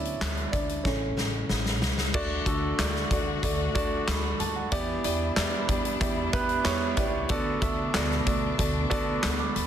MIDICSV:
0, 0, Header, 1, 5, 480
1, 0, Start_track
1, 0, Key_signature, 2, "major"
1, 0, Tempo, 645161
1, 1591, Time_signature, 4, 2, 24, 8
1, 7193, End_track
2, 0, Start_track
2, 0, Title_t, "Grand piano"
2, 0, Program_c, 0, 0
2, 0, Control_c, 0, 64, 127
2, 0, Note_on_c, 0, 50, 51
2, 0, Note_on_c, 0, 54, 46
2, 0, Note_on_c, 0, 59, 58
2, 0, Note_on_c, 0, 61, 57
2, 0, Note_on_c, 0, 62, 63
2, 0, Note_on_c, 0, 64, 65
2, 0, Note_on_c, 0, 73, 78
2, 0, Note_on_c, 0, 74, 85
2, 0, Note_on_c, 0, 76, 75
2, 365, Note_off_c, 0, 64, 0
2, 382, Note_off_c, 0, 74, 0
2, 382, Note_on_c, 0, 74, 68
2, 400, Note_off_c, 0, 76, 0
2, 402, Note_off_c, 0, 62, 0
2, 402, Note_on_c, 0, 62, 48
2, 603, Note_off_c, 0, 50, 0
2, 607, Note_off_c, 0, 54, 0
2, 609, Note_off_c, 0, 59, 0
2, 620, Note_off_c, 0, 62, 0
2, 623, Note_off_c, 0, 73, 0
2, 623, Note_on_c, 0, 73, 65
2, 631, Note_on_c, 0, 49, 41
2, 634, Note_off_c, 0, 74, 0
2, 636, Note_on_c, 0, 52, 39
2, 641, Control_c, 0, 64, 0
2, 644, Note_off_c, 0, 61, 0
2, 644, Note_on_c, 0, 57, 51
2, 644, Note_on_c, 0, 61, 50
2, 787, Control_c, 0, 64, 127
2, 1077, Note_off_c, 0, 73, 0
2, 1088, Note_off_c, 0, 61, 0
2, 1321, Note_off_c, 0, 49, 0
2, 1324, Note_off_c, 0, 52, 0
2, 1328, Note_off_c, 0, 57, 0
2, 1595, Note_on_c, 0, 57, 110
2, 1596, Note_on_c, 0, 62, 102
2, 1596, Note_on_c, 0, 66, 99
2, 1596, Note_on_c, 0, 74, 115
2, 1598, Note_on_c, 0, 50, 73
2, 1601, Control_c, 0, 64, 0
2, 1752, Control_c, 0, 64, 127
2, 1782, Note_off_c, 0, 57, 0
2, 1783, Note_off_c, 0, 62, 0
2, 1783, Note_off_c, 0, 66, 0
2, 1783, Note_off_c, 0, 74, 0
2, 1835, Note_on_c, 0, 62, 77
2, 1836, Note_on_c, 0, 66, 83
2, 1837, Note_on_c, 0, 57, 87
2, 1838, Note_on_c, 0, 69, 87
2, 2022, Note_off_c, 0, 62, 0
2, 2023, Note_off_c, 0, 57, 0
2, 2023, Note_off_c, 0, 66, 0
2, 2024, Note_off_c, 0, 69, 0
2, 2077, Note_on_c, 0, 57, 86
2, 2077, Note_on_c, 0, 66, 81
2, 2079, Note_on_c, 0, 74, 88
2, 2080, Note_on_c, 0, 62, 81
2, 2263, Note_off_c, 0, 57, 0
2, 2263, Note_off_c, 0, 66, 0
2, 2264, Note_off_c, 0, 74, 0
2, 2265, Note_off_c, 0, 62, 0
2, 2285, Note_off_c, 0, 50, 0
2, 2316, Note_on_c, 0, 57, 79
2, 2317, Note_on_c, 0, 62, 72
2, 2317, Note_on_c, 0, 66, 73
2, 2318, Note_on_c, 0, 74, 85
2, 2503, Note_off_c, 0, 57, 0
2, 2503, Note_off_c, 0, 62, 0
2, 2503, Note_off_c, 0, 66, 0
2, 2504, Note_off_c, 0, 74, 0
2, 2555, Note_on_c, 0, 66, 70
2, 2556, Note_on_c, 0, 74, 92
2, 2557, Note_on_c, 0, 57, 88
2, 2559, Note_on_c, 0, 62, 74
2, 2742, Note_off_c, 0, 66, 0
2, 2743, Note_off_c, 0, 57, 0
2, 2743, Note_off_c, 0, 74, 0
2, 2744, Note_off_c, 0, 62, 0
2, 2787, Note_on_c, 0, 74, 116
2, 2789, Note_on_c, 0, 57, 100
2, 2789, Note_on_c, 0, 62, 95
2, 2789, Note_on_c, 0, 66, 101
2, 2978, Note_off_c, 0, 74, 0
2, 2979, Note_off_c, 0, 57, 0
2, 2979, Note_off_c, 0, 62, 0
2, 2979, Note_off_c, 0, 66, 0
2, 3033, Note_on_c, 0, 83, 71
2, 3260, Note_off_c, 0, 83, 0
2, 3271, Note_on_c, 0, 81, 73
2, 3385, Note_off_c, 0, 81, 0
2, 3391, Note_on_c, 0, 78, 67
2, 3509, Note_on_c, 0, 52, 78
2, 3510, Note_on_c, 0, 59, 111
2, 3510, Note_on_c, 0, 64, 98
2, 3510, Note_on_c, 0, 74, 127
2, 3512, Note_on_c, 0, 67, 97
2, 3520, Control_c, 0, 64, 0
2, 3619, Note_off_c, 0, 78, 0
2, 3659, Control_c, 0, 64, 127
2, 3700, Note_off_c, 0, 59, 0
2, 3700, Note_off_c, 0, 64, 0
2, 3700, Note_off_c, 0, 74, 0
2, 3701, Note_off_c, 0, 67, 0
2, 3751, Note_on_c, 0, 59, 86
2, 3753, Note_on_c, 0, 67, 80
2, 3754, Note_on_c, 0, 64, 76
2, 3755, Note_on_c, 0, 74, 100
2, 3940, Note_off_c, 0, 59, 0
2, 3941, Note_off_c, 0, 67, 0
2, 3942, Note_off_c, 0, 64, 0
2, 3942, Note_off_c, 0, 74, 0
2, 3989, Note_on_c, 0, 64, 80
2, 3990, Note_on_c, 0, 74, 98
2, 3991, Note_on_c, 0, 59, 90
2, 3991, Note_on_c, 0, 67, 82
2, 4179, Note_off_c, 0, 64, 0
2, 4180, Note_off_c, 0, 59, 0
2, 4180, Note_off_c, 0, 67, 0
2, 4180, Note_off_c, 0, 74, 0
2, 4200, Note_off_c, 0, 52, 0
2, 4226, Note_on_c, 0, 59, 78
2, 4226, Note_on_c, 0, 67, 74
2, 4227, Note_on_c, 0, 64, 71
2, 4230, Note_on_c, 0, 74, 91
2, 4417, Note_off_c, 0, 67, 0
2, 4418, Note_off_c, 0, 59, 0
2, 4418, Note_off_c, 0, 64, 0
2, 4420, Note_off_c, 0, 74, 0
2, 4473, Note_on_c, 0, 64, 74
2, 4474, Note_on_c, 0, 59, 77
2, 4475, Note_on_c, 0, 74, 86
2, 4476, Note_on_c, 0, 67, 79
2, 4661, Note_off_c, 0, 64, 0
2, 4662, Note_off_c, 0, 59, 0
2, 4662, Note_off_c, 0, 67, 0
2, 4662, Note_off_c, 0, 74, 0
2, 4710, Note_on_c, 0, 59, 106
2, 4710, Note_on_c, 0, 64, 94
2, 4711, Note_on_c, 0, 71, 122
2, 4712, Note_on_c, 0, 67, 94
2, 4900, Note_off_c, 0, 59, 0
2, 4900, Note_off_c, 0, 64, 0
2, 4900, Note_off_c, 0, 67, 0
2, 4900, Note_off_c, 0, 71, 0
2, 4941, Note_on_c, 0, 64, 102
2, 4942, Note_on_c, 0, 59, 118
2, 4944, Note_on_c, 0, 67, 110
2, 4944, Note_on_c, 0, 73, 127
2, 5135, Note_off_c, 0, 64, 0
2, 5136, Note_off_c, 0, 59, 0
2, 5137, Note_off_c, 0, 67, 0
2, 5137, Note_off_c, 0, 73, 0
2, 5183, Note_on_c, 0, 64, 84
2, 5185, Note_on_c, 0, 59, 94
2, 5185, Note_on_c, 0, 67, 88
2, 5186, Note_on_c, 0, 74, 93
2, 5376, Note_off_c, 0, 64, 0
2, 5377, Note_off_c, 0, 59, 0
2, 5377, Note_off_c, 0, 67, 0
2, 5378, Note_off_c, 0, 74, 0
2, 5427, Note_on_c, 0, 66, 97
2, 5427, Note_on_c, 0, 69, 105
2, 5428, Note_on_c, 0, 59, 111
2, 5429, Note_on_c, 0, 50, 77
2, 5429, Note_on_c, 0, 74, 120
2, 5441, Control_c, 0, 64, 0
2, 5562, Control_c, 0, 64, 127
2, 5618, Note_off_c, 0, 66, 0
2, 5618, Note_off_c, 0, 69, 0
2, 5619, Note_off_c, 0, 59, 0
2, 5619, Note_off_c, 0, 74, 0
2, 5666, Note_on_c, 0, 59, 88
2, 5668, Note_on_c, 0, 66, 81
2, 5670, Note_on_c, 0, 69, 80
2, 5672, Note_on_c, 0, 76, 97
2, 5858, Note_off_c, 0, 59, 0
2, 5858, Note_off_c, 0, 66, 0
2, 5860, Note_off_c, 0, 69, 0
2, 5860, Note_off_c, 0, 76, 0
2, 5908, Note_on_c, 0, 59, 88
2, 5909, Note_on_c, 0, 66, 86
2, 5912, Note_on_c, 0, 69, 83
2, 5913, Note_on_c, 0, 74, 101
2, 6098, Note_off_c, 0, 59, 0
2, 6099, Note_off_c, 0, 66, 0
2, 6100, Note_off_c, 0, 69, 0
2, 6101, Note_off_c, 0, 74, 0
2, 6120, Note_off_c, 0, 50, 0
2, 6147, Note_on_c, 0, 74, 90
2, 6148, Note_on_c, 0, 69, 77
2, 6149, Note_on_c, 0, 59, 81
2, 6151, Note_on_c, 0, 66, 75
2, 6338, Note_off_c, 0, 74, 0
2, 6339, Note_off_c, 0, 59, 0
2, 6339, Note_off_c, 0, 69, 0
2, 6340, Note_off_c, 0, 66, 0
2, 6385, Note_on_c, 0, 59, 76
2, 6386, Note_on_c, 0, 69, 76
2, 6387, Note_on_c, 0, 74, 85
2, 6388, Note_on_c, 0, 66, 73
2, 6577, Note_off_c, 0, 59, 0
2, 6577, Note_off_c, 0, 69, 0
2, 6578, Note_off_c, 0, 66, 0
2, 6578, Note_off_c, 0, 74, 0
2, 6620, Note_on_c, 0, 59, 108
2, 6621, Note_on_c, 0, 69, 97
2, 6622, Note_on_c, 0, 66, 96
2, 6624, Note_on_c, 0, 74, 123
2, 6814, Note_off_c, 0, 59, 0
2, 6815, Note_off_c, 0, 69, 0
2, 6816, Note_off_c, 0, 66, 0
2, 6817, Note_off_c, 0, 74, 0
2, 6992, Note_on_c, 0, 86, 68
2, 7105, Note_off_c, 0, 86, 0
2, 7109, Note_on_c, 0, 83, 75
2, 7193, Note_off_c, 0, 83, 0
2, 7193, End_track
3, 0, Start_track
3, 0, Title_t, "String section"
3, 0, Program_c, 1, 48
3, 1587, Note_on_c, 1, 57, 73
3, 1591, Note_on_c, 1, 50, 70
3, 1594, Note_on_c, 1, 66, 82
3, 3490, Note_off_c, 1, 57, 0
3, 3492, Note_off_c, 1, 50, 0
3, 3493, Note_off_c, 1, 66, 0
3, 3511, Note_on_c, 1, 62, 69
3, 3511, Note_on_c, 1, 64, 76
3, 3513, Note_on_c, 1, 55, 66
3, 5412, Note_off_c, 1, 62, 0
3, 5412, Note_off_c, 1, 64, 0
3, 5413, Note_off_c, 1, 55, 0
3, 5437, Note_on_c, 1, 47, 80
3, 5440, Note_on_c, 1, 57, 70
3, 5440, Note_on_c, 1, 62, 81
3, 7193, Note_off_c, 1, 47, 0
3, 7193, Note_off_c, 1, 57, 0
3, 7193, Note_off_c, 1, 62, 0
3, 7193, End_track
4, 0, Start_track
4, 0, Title_t, "Upright bass"
4, 0, Program_c, 2, 32
4, 0, Note_on_c, 2, 38, 85
4, 110, Note_off_c, 2, 38, 0
4, 156, Note_on_c, 2, 38, 77
4, 351, Note_off_c, 2, 38, 0
4, 393, Note_on_c, 2, 38, 73
4, 589, Note_off_c, 2, 38, 0
4, 632, Note_on_c, 2, 33, 91
4, 828, Note_off_c, 2, 33, 0
4, 869, Note_on_c, 2, 33, 84
4, 1067, Note_off_c, 2, 33, 0
4, 1113, Note_on_c, 2, 33, 84
4, 1355, Note_off_c, 2, 33, 0
4, 1355, Note_on_c, 2, 37, 77
4, 1550, Note_off_c, 2, 37, 0
4, 1592, Note_on_c, 2, 38, 102
4, 1788, Note_off_c, 2, 38, 0
4, 1832, Note_on_c, 2, 38, 93
4, 2029, Note_off_c, 2, 38, 0
4, 2072, Note_on_c, 2, 38, 105
4, 2268, Note_off_c, 2, 38, 0
4, 2312, Note_on_c, 2, 38, 81
4, 2508, Note_off_c, 2, 38, 0
4, 2551, Note_on_c, 2, 38, 112
4, 2748, Note_off_c, 2, 38, 0
4, 2794, Note_on_c, 2, 38, 87
4, 2990, Note_off_c, 2, 38, 0
4, 3034, Note_on_c, 2, 38, 98
4, 3230, Note_off_c, 2, 38, 0
4, 3272, Note_on_c, 2, 39, 97
4, 3469, Note_off_c, 2, 39, 0
4, 3510, Note_on_c, 2, 40, 98
4, 3707, Note_off_c, 2, 40, 0
4, 3752, Note_on_c, 2, 40, 95
4, 3948, Note_off_c, 2, 40, 0
4, 3991, Note_on_c, 2, 40, 89
4, 4188, Note_off_c, 2, 40, 0
4, 4231, Note_on_c, 2, 40, 87
4, 4428, Note_off_c, 2, 40, 0
4, 4468, Note_on_c, 2, 40, 117
4, 4666, Note_off_c, 2, 40, 0
4, 4712, Note_on_c, 2, 40, 87
4, 4909, Note_off_c, 2, 40, 0
4, 4949, Note_on_c, 2, 40, 93
4, 5146, Note_off_c, 2, 40, 0
4, 5186, Note_on_c, 2, 37, 89
4, 5385, Note_off_c, 2, 37, 0
4, 5429, Note_on_c, 2, 38, 98
4, 5627, Note_off_c, 2, 38, 0
4, 5669, Note_on_c, 2, 38, 91
4, 5867, Note_off_c, 2, 38, 0
4, 5911, Note_on_c, 2, 38, 96
4, 6108, Note_off_c, 2, 38, 0
4, 6150, Note_on_c, 2, 38, 90
4, 6347, Note_off_c, 2, 38, 0
4, 6392, Note_on_c, 2, 38, 109
4, 6588, Note_off_c, 2, 38, 0
4, 6633, Note_on_c, 2, 38, 96
4, 6829, Note_off_c, 2, 38, 0
4, 6873, Note_on_c, 2, 38, 89
4, 7069, Note_off_c, 2, 38, 0
4, 7110, Note_on_c, 2, 39, 86
4, 7193, Note_off_c, 2, 39, 0
4, 7193, End_track
5, 0, Start_track
5, 0, Title_t, "Drums"
5, 39, Note_on_c, 9, 42, 41
5, 114, Note_off_c, 9, 42, 0
5, 159, Note_on_c, 9, 38, 87
5, 161, Note_on_c, 9, 42, 69
5, 164, Note_on_c, 9, 39, 76
5, 233, Note_off_c, 9, 38, 0
5, 236, Note_off_c, 9, 42, 0
5, 239, Note_off_c, 9, 39, 0
5, 277, Note_on_c, 9, 42, 30
5, 352, Note_off_c, 9, 42, 0
5, 395, Note_on_c, 9, 36, 78
5, 398, Note_on_c, 9, 42, 62
5, 470, Note_off_c, 9, 36, 0
5, 473, Note_off_c, 9, 42, 0
5, 516, Note_on_c, 9, 42, 52
5, 590, Note_off_c, 9, 42, 0
5, 633, Note_on_c, 9, 36, 76
5, 633, Note_on_c, 9, 38, 49
5, 707, Note_off_c, 9, 36, 0
5, 707, Note_off_c, 9, 38, 0
5, 874, Note_on_c, 9, 38, 63
5, 949, Note_off_c, 9, 38, 0
5, 1112, Note_on_c, 9, 38, 71
5, 1186, Note_off_c, 9, 38, 0
5, 1233, Note_on_c, 9, 38, 67
5, 1307, Note_off_c, 9, 38, 0
5, 1354, Note_on_c, 9, 38, 84
5, 1428, Note_off_c, 9, 38, 0
5, 1473, Note_on_c, 9, 38, 77
5, 1547, Note_off_c, 9, 38, 0
5, 1593, Note_on_c, 9, 36, 125
5, 1594, Note_on_c, 9, 49, 94
5, 1668, Note_off_c, 9, 36, 0
5, 1668, Note_off_c, 9, 49, 0
5, 1831, Note_on_c, 9, 36, 85
5, 1834, Note_on_c, 9, 42, 76
5, 1906, Note_off_c, 9, 36, 0
5, 1909, Note_off_c, 9, 42, 0
5, 2075, Note_on_c, 9, 38, 101
5, 2077, Note_on_c, 9, 42, 89
5, 2080, Note_on_c, 9, 39, 82
5, 2149, Note_off_c, 9, 38, 0
5, 2152, Note_off_c, 9, 42, 0
5, 2155, Note_off_c, 9, 39, 0
5, 2198, Note_on_c, 9, 38, 33
5, 2273, Note_off_c, 9, 38, 0
5, 2313, Note_on_c, 9, 36, 84
5, 2316, Note_on_c, 9, 42, 68
5, 2387, Note_off_c, 9, 36, 0
5, 2390, Note_off_c, 9, 42, 0
5, 2552, Note_on_c, 9, 36, 84
5, 2557, Note_on_c, 9, 42, 92
5, 2627, Note_off_c, 9, 36, 0
5, 2632, Note_off_c, 9, 42, 0
5, 2793, Note_on_c, 9, 36, 106
5, 2794, Note_on_c, 9, 42, 76
5, 2868, Note_off_c, 9, 36, 0
5, 2868, Note_off_c, 9, 42, 0
5, 3033, Note_on_c, 9, 38, 107
5, 3033, Note_on_c, 9, 42, 90
5, 3039, Note_on_c, 9, 39, 82
5, 3107, Note_off_c, 9, 42, 0
5, 3108, Note_off_c, 9, 38, 0
5, 3113, Note_off_c, 9, 39, 0
5, 3272, Note_on_c, 9, 42, 73
5, 3346, Note_off_c, 9, 42, 0
5, 3509, Note_on_c, 9, 42, 89
5, 3512, Note_on_c, 9, 36, 114
5, 3583, Note_off_c, 9, 42, 0
5, 3586, Note_off_c, 9, 36, 0
5, 3751, Note_on_c, 9, 42, 78
5, 3825, Note_off_c, 9, 42, 0
5, 3992, Note_on_c, 9, 38, 102
5, 3994, Note_on_c, 9, 42, 91
5, 3997, Note_on_c, 9, 39, 82
5, 4066, Note_off_c, 9, 38, 0
5, 4069, Note_off_c, 9, 42, 0
5, 4071, Note_off_c, 9, 39, 0
5, 4232, Note_on_c, 9, 36, 81
5, 4232, Note_on_c, 9, 42, 75
5, 4306, Note_off_c, 9, 36, 0
5, 4306, Note_off_c, 9, 42, 0
5, 4352, Note_on_c, 9, 42, 62
5, 4427, Note_off_c, 9, 42, 0
5, 4471, Note_on_c, 9, 36, 89
5, 4471, Note_on_c, 9, 42, 84
5, 4545, Note_off_c, 9, 36, 0
5, 4545, Note_off_c, 9, 42, 0
5, 4709, Note_on_c, 9, 42, 77
5, 4712, Note_on_c, 9, 36, 106
5, 4783, Note_off_c, 9, 42, 0
5, 4786, Note_off_c, 9, 36, 0
5, 4828, Note_on_c, 9, 42, 43
5, 4902, Note_off_c, 9, 42, 0
5, 4946, Note_on_c, 9, 42, 90
5, 4947, Note_on_c, 9, 38, 104
5, 4952, Note_on_c, 9, 39, 81
5, 5020, Note_off_c, 9, 42, 0
5, 5021, Note_off_c, 9, 38, 0
5, 5026, Note_off_c, 9, 39, 0
5, 5183, Note_on_c, 9, 42, 74
5, 5188, Note_on_c, 9, 36, 94
5, 5258, Note_off_c, 9, 42, 0
5, 5262, Note_off_c, 9, 36, 0
5, 5423, Note_on_c, 9, 42, 91
5, 5429, Note_on_c, 9, 36, 115
5, 5497, Note_off_c, 9, 42, 0
5, 5504, Note_off_c, 9, 36, 0
5, 5666, Note_on_c, 9, 42, 75
5, 5668, Note_on_c, 9, 36, 90
5, 5741, Note_off_c, 9, 42, 0
5, 5743, Note_off_c, 9, 36, 0
5, 5907, Note_on_c, 9, 38, 104
5, 5910, Note_on_c, 9, 42, 91
5, 5913, Note_on_c, 9, 39, 86
5, 5982, Note_off_c, 9, 38, 0
5, 5984, Note_off_c, 9, 42, 0
5, 5987, Note_off_c, 9, 39, 0
5, 6033, Note_on_c, 9, 38, 33
5, 6107, Note_off_c, 9, 38, 0
5, 6149, Note_on_c, 9, 42, 71
5, 6151, Note_on_c, 9, 36, 90
5, 6223, Note_off_c, 9, 42, 0
5, 6226, Note_off_c, 9, 36, 0
5, 6389, Note_on_c, 9, 42, 85
5, 6391, Note_on_c, 9, 36, 82
5, 6464, Note_off_c, 9, 42, 0
5, 6465, Note_off_c, 9, 36, 0
5, 6629, Note_on_c, 9, 42, 83
5, 6632, Note_on_c, 9, 36, 103
5, 6703, Note_off_c, 9, 42, 0
5, 6707, Note_off_c, 9, 36, 0
5, 6866, Note_on_c, 9, 42, 95
5, 6867, Note_on_c, 9, 38, 108
5, 6872, Note_on_c, 9, 39, 94
5, 6940, Note_off_c, 9, 42, 0
5, 6941, Note_off_c, 9, 38, 0
5, 6947, Note_off_c, 9, 39, 0
5, 7111, Note_on_c, 9, 42, 76
5, 7185, Note_off_c, 9, 42, 0
5, 7193, End_track
0, 0, End_of_file